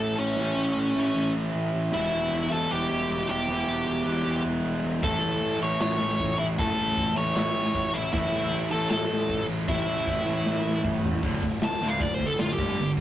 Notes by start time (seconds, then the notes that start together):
Already playing: A2 E3 A3 C#4 E4 A4 A5
0.00 A1
0.19 A1 C#4 C#5
0.37 A1 A2 E3 A3 C#4 E4 A4
0.57 A1
0.77 A1
0.96 A1 A2 E3 A3
1.15 A1 A2 E3 A3 C#4 E4 A4
1.36 A1
1.55 A1
1.75 A1
1.92 E1 E2 B2 E3 G3 B3 E4 E5
2.13 E1
2.33 E1
2.51 E1 E2 B2 E3 A4 A5
2.70 E1 E2 B2 E3 G3 B3 E4 G4 G5
2.91 E1
3.10 E1
3.29 E1 G4 G5
3.47 E1 E2 B2 E3 G3 B3 E4
3.68 E1
3.88 E1
4.06 E1 E2 B2 E3
4.25 E1 E2 B2 E3 G3 B3 E4
4.45 E1
4.64 E1
4.83 E1
5.03 A1 A2 E3 A3 C#4 E4 A4 A5, kick, crash
5.22 A1, crash
5.42 A1, crash
5.61 A1 A2 E3 A3 C#5 C#6, crash
5.80 A1 A2 E3 A3 C#4 E4 A4 C#5 C#6, snare, crash
6.00 A1, crash
6.19 A1, kick, crash
6.39 A1 E4 E5, crash
6.58 A1 A2 E3 A3 C#4 E4 A4 A5, kick, crash
6.78 A1, crash
6.97 A1, kick, crash
7.16 A1 A2 E3 A3 C#5 C#6, crash
7.35 A1 A2 E3 A3 C#4 E4 A4 C#5 C#6, snare, crash
7.55 A1, crash
7.75 A1, kick, crash
7.94 A1 E4 E5, crash
8.12 A1 A2 E3 A3 C#4 E4 A4 E5, kick, crash
8.33 A1, crash
8.52 A1, crash
8.71 A1 A2 E3 A3 A4 A5, crash
8.90 A1 A2 E3 A3 C#4 E4 A4 A5, snare, crash
9.10 A1, crash
9.29 A1, kick, crash
9.49 A1, crash
9.67 A1 A2 E3 A3 C#4 E4 A4 E5, kick, crash
9.88 A1, crash
10.07 A1, kick, crash
10.26 A1 A2 E3 A3, crash
10.45 A1 A2 E3 A3 C#4 E4 A4, snare
10.66 A1
10.84 A1, kick, mid tom
11.04 A1, floor tom
11.23 D1 D2 A2 D3, kick, crash
11.42 D1 D2 A2, kick, crash
11.61 D1 D2 A2 D3 A5, snare, crash
11.81 D1 D2 A2 D3, crash
11.88 F5
12.00 D1 D2 A2 D3 D5, kick, crash
12.14 C5
12.19 D2 A2, kick, crash
12.26 A4
12.39 F#1 D2 A2 D3 F4, snare, crash
12.53 G4
12.57 G1 G2 D3 G3, kick, crash
12.77 G1 G2 D3 G3, crash
12.97 G1 G2, kick, crash